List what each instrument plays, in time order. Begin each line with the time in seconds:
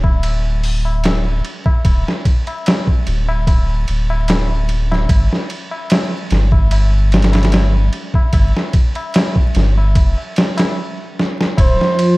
Already playing: sub bass D1
0.03 kick, tabla na
0.23 ride, tabla na
0.44 tabla na
0.64 open hi-hat
0.85 tabla na
1.04 snare, ride, tabla na
1.26 tabla na
1.45 ride
1.66 kick, tabla na
1.85 sub bass D1, kick, ride, tabla na
2.07 snare, tabla na
2.25 kick, ride
2.47 ride, tabla na
2.66 snare, ride, tabla na
2.87 kick, tabla na
3.07 sub bass D1, ride
3.29 tabla na
3.47 kick, ride, tabla na
3.70 tabla na
3.88 sub bass D1, ride
4.10 tabla na
4.28 snare, ride, tabla na
4.50 tabla na
4.69 ride
4.92 snare, tabla na
5.09 sub bass G1, kick, ride, tabla na
5.31 snare, tabla na
5.50 ride
5.71 tabla na
5.90 snare, ride, tabla na
6.12 tabla na
6.31 sub bass G1, snare, ride
6.52 kick, tabla na
6.71 ride, tabla na
6.94 tabla na
7.12 snare, ride
7.22 snare, ride
7.32 snare, ride, tabla na
7.43 snare, ride
7.52 snare, ride, tabla na
7.74 tabla na
7.93 ride
8.14 kick, tabla na
8.33 sub bass G1, kick, ride, tabla na
8.56 snare, tabla na
8.73 kick, ride
8.95 ride, tabla na
9.14 snare, ride, tabla na
9.36 kick, tabla na
9.55 sub bass G1, snare, ride
9.78 tabla na
9.95 sub bass F1, kick, ride, tabla na
10.18 tabla na
10.36 snare, ride
10.57 snare, ride, tabla na
11.19 snare
11.41 snare
11.57 sub bass D1, analog synth pad F3 F4, muted trumpet C5, kick, ride, tabla na
11.79 snare, tabla na
11.99 ride